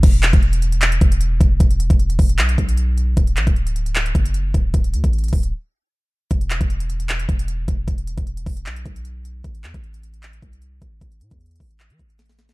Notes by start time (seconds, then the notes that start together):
0.03 E1, kick, closed hi-hat, crash
0.14 closed hi-hat
0.23 clap, closed hi-hat
0.33 E1, kick, closed hi-hat
0.42 closed hi-hat
0.53 closed hi-hat
0.62 closed hi-hat
0.72 closed hi-hat
0.81 clap, closed hi-hat
0.92 closed hi-hat
1.01 E1, kick, closed hi-hat
1.12 closed hi-hat
1.21 closed hi-hat
1.41 E1, kick, closed hi-hat
1.60 E1, kick, closed hi-hat
1.71 closed hi-hat
1.80 closed hi-hat
1.90 E1, kick, closed hi-hat
1.99 closed hi-hat
2.10 closed hi-hat
2.19 E1, kick, open hi-hat
2.29 closed hi-hat
2.38 B1, clap, closed hi-hat
2.49 closed hi-hat
2.58 B1, kick, closed hi-hat
2.69 closed hi-hat
2.77 closed hi-hat
2.98 closed hi-hat
3.17 D1, kick, closed hi-hat
3.27 closed hi-hat
3.37 A1, clap, closed hi-hat
3.47 D1, kick, closed hi-hat
3.56 closed hi-hat
3.67 closed hi-hat
3.76 closed hi-hat
3.86 closed hi-hat
3.95 clap, closed hi-hat
4.06 closed hi-hat
4.15 F#1, kick, closed hi-hat
4.25 closed hi-hat
4.34 closed hi-hat
4.54 D1, kick, closed hi-hat
4.74 D1, kick, closed hi-hat
4.84 closed hi-hat
4.94 D2, closed hi-hat
5.04 A1, kick, closed hi-hat
5.13 closed hi-hat
5.18 closed hi-hat
5.24 closed hi-hat
5.28 closed hi-hat
5.33 D1, kick, open hi-hat
5.43 closed hi-hat
6.31 E1, kick, closed hi-hat
6.41 closed hi-hat
6.50 clap, closed hi-hat
6.61 E1, kick, closed hi-hat
6.70 closed hi-hat
6.80 closed hi-hat
6.90 closed hi-hat
7.00 closed hi-hat
7.09 clap, closed hi-hat
7.19 closed hi-hat
7.29 E1, kick, closed hi-hat
7.39 closed hi-hat
7.48 closed hi-hat
7.68 E1, kick, closed hi-hat
7.88 E1, kick, closed hi-hat
7.98 closed hi-hat
8.07 closed hi-hat
8.18 E1, kick, closed hi-hat
8.27 closed hi-hat
8.37 closed hi-hat
8.46 E1, kick, open hi-hat
8.57 closed hi-hat
8.66 B1, clap, closed hi-hat
8.76 closed hi-hat
8.86 B1, kick, closed hi-hat
8.96 closed hi-hat
9.05 closed hi-hat
9.25 closed hi-hat
9.44 A1, kick, closed hi-hat
9.55 closed hi-hat
9.64 E2, clap, closed hi-hat
9.74 A1, kick, closed hi-hat
9.84 closed hi-hat
9.94 closed hi-hat
10.03 closed hi-hat
10.14 closed hi-hat
10.23 clap, closed hi-hat
10.33 closed hi-hat
10.42 C2, kick, closed hi-hat
10.53 closed hi-hat
10.62 closed hi-hat
10.82 A1, kick, closed hi-hat
11.01 A1, kick, closed hi-hat
11.12 closed hi-hat
11.21 A2, closed hi-hat
11.31 E2, kick, closed hi-hat
11.41 closed hi-hat
11.46 closed hi-hat
11.51 closed hi-hat
11.56 closed hi-hat
11.60 A1, kick, open hi-hat
11.71 closed hi-hat
11.80 clap, closed hi-hat
11.90 E3, closed hi-hat
11.99 A1, kick, closed hi-hat
12.10 closed hi-hat
12.19 snare, closed hi-hat
12.26 snare, closed hi-hat
12.32 closed hi-hat
12.39 snare, closed hi-hat
12.49 snare